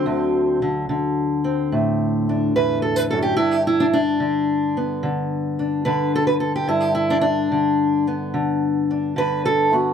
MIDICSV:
0, 0, Header, 1, 2, 480
1, 0, Start_track
1, 0, Tempo, 829876
1, 23, Time_signature, 4, 2, 24, 8
1, 5746, End_track
2, 0, Start_track
2, 0, Title_t, "Steel-string acoustic guitar"
2, 0, Program_c, 0, 25
2, 0, Note_on_c, 0, 50, 67
2, 0, Note_on_c, 0, 54, 43
2, 0, Note_on_c, 0, 60, 90
2, 34, Note_on_c, 0, 38, 76
2, 345, Note_off_c, 0, 60, 0
2, 352, Note_off_c, 0, 50, 0
2, 359, Note_on_c, 0, 50, 52
2, 509, Note_off_c, 0, 50, 0
2, 515, Note_on_c, 0, 50, 60
2, 833, Note_off_c, 0, 54, 0
2, 835, Note_on_c, 0, 60, 47
2, 996, Note_on_c, 0, 45, 62
2, 1326, Note_on_c, 0, 62, 49
2, 1471, Note_off_c, 0, 38, 0
2, 1479, Note_on_c, 0, 40, 63
2, 1480, Note_on_c, 0, 71, 90
2, 1630, Note_off_c, 0, 71, 0
2, 1632, Note_on_c, 0, 69, 84
2, 1712, Note_off_c, 0, 69, 0
2, 1712, Note_on_c, 0, 71, 86
2, 1746, Note_off_c, 0, 71, 0
2, 1796, Note_on_c, 0, 69, 85
2, 1797, Note_off_c, 0, 40, 0
2, 1806, Note_on_c, 0, 42, 60
2, 1863, Note_off_c, 0, 69, 0
2, 1865, Note_on_c, 0, 67, 91
2, 1930, Note_off_c, 0, 60, 0
2, 1931, Note_off_c, 0, 67, 0
2, 1944, Note_off_c, 0, 62, 0
2, 1946, Note_on_c, 0, 64, 99
2, 1951, Note_off_c, 0, 45, 0
2, 1953, Note_off_c, 0, 42, 0
2, 1957, Note_on_c, 0, 43, 69
2, 2032, Note_on_c, 0, 67, 94
2, 2054, Note_off_c, 0, 64, 0
2, 2095, Note_off_c, 0, 67, 0
2, 2123, Note_on_c, 0, 64, 84
2, 2199, Note_on_c, 0, 62, 90
2, 2230, Note_off_c, 0, 62, 0
2, 2276, Note_on_c, 0, 62, 95
2, 2279, Note_off_c, 0, 64, 0
2, 2422, Note_off_c, 0, 50, 0
2, 2429, Note_on_c, 0, 50, 64
2, 2751, Note_off_c, 0, 62, 0
2, 2759, Note_on_c, 0, 59, 46
2, 2902, Note_off_c, 0, 50, 0
2, 2908, Note_on_c, 0, 50, 65
2, 3234, Note_on_c, 0, 62, 47
2, 3381, Note_off_c, 0, 50, 0
2, 3383, Note_on_c, 0, 71, 83
2, 3388, Note_on_c, 0, 50, 68
2, 3544, Note_off_c, 0, 71, 0
2, 3560, Note_on_c, 0, 69, 91
2, 3624, Note_off_c, 0, 69, 0
2, 3626, Note_on_c, 0, 71, 88
2, 3663, Note_off_c, 0, 71, 0
2, 3703, Note_on_c, 0, 69, 76
2, 3789, Note_off_c, 0, 69, 0
2, 3792, Note_on_c, 0, 67, 93
2, 3851, Note_off_c, 0, 59, 0
2, 3852, Note_off_c, 0, 43, 0
2, 3854, Note_off_c, 0, 67, 0
2, 3861, Note_on_c, 0, 43, 73
2, 3864, Note_off_c, 0, 62, 0
2, 3866, Note_on_c, 0, 64, 89
2, 3936, Note_on_c, 0, 67, 88
2, 3974, Note_off_c, 0, 64, 0
2, 4006, Note_off_c, 0, 67, 0
2, 4018, Note_on_c, 0, 64, 90
2, 4108, Note_on_c, 0, 62, 97
2, 4144, Note_off_c, 0, 62, 0
2, 4173, Note_on_c, 0, 62, 103
2, 4186, Note_off_c, 0, 64, 0
2, 4340, Note_off_c, 0, 50, 0
2, 4347, Note_on_c, 0, 50, 66
2, 4659, Note_off_c, 0, 62, 0
2, 4670, Note_on_c, 0, 59, 50
2, 4815, Note_off_c, 0, 50, 0
2, 4822, Note_on_c, 0, 50, 67
2, 5151, Note_on_c, 0, 62, 47
2, 5292, Note_off_c, 0, 50, 0
2, 5298, Note_on_c, 0, 50, 67
2, 5310, Note_on_c, 0, 71, 98
2, 5466, Note_off_c, 0, 71, 0
2, 5469, Note_on_c, 0, 69, 92
2, 5621, Note_off_c, 0, 59, 0
2, 5627, Note_off_c, 0, 69, 0
2, 5628, Note_on_c, 0, 59, 45
2, 5629, Note_off_c, 0, 62, 0
2, 5629, Note_on_c, 0, 66, 86
2, 5746, Note_off_c, 0, 43, 0
2, 5746, Note_off_c, 0, 50, 0
2, 5746, Note_off_c, 0, 59, 0
2, 5746, Note_off_c, 0, 66, 0
2, 5746, End_track
0, 0, End_of_file